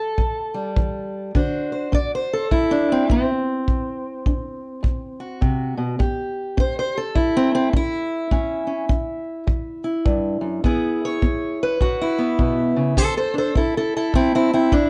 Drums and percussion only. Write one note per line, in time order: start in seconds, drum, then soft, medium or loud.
0.18 kick medium
0.76 kick medium
1.35 kick medium
1.93 kick medium
2.51 kick medium
3.10 kick medium
3.68 kick medium
4.26 kick medium
4.84 kick medium
5.42 kick medium
6.00 kick medium
6.58 kick medium
7.16 kick medium
7.73 kick medium
8.31 kick medium
8.89 kick medium
9.48 kick medium
10.06 kick medium
10.64 kick medium
11.22 kick medium
11.81 kick medium
12.39 kick medium
12.97 kick medium
13.56 kick medium
14.14 kick medium
14.72 kick medium